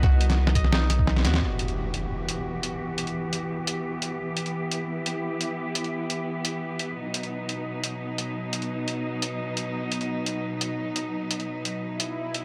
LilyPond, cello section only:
\new Staff \with { instrumentName = "Cello section" } { \time 4/4 \key e \minor \tempo 4 = 173 << { b1 | <e b g'>1~ | <e b g'>1~ | <e b g'>1~ |
<e b g'>1 | <b, fis dis'>1~ | <b, fis dis'>1~ | <b, fis dis'>1~ |
<b, fis dis'>1 | } \\ { dis'1 | fis'1~ | fis'1 | e'1~ |
e'1 | r1 | r1 | r1 |
r1 | } >> }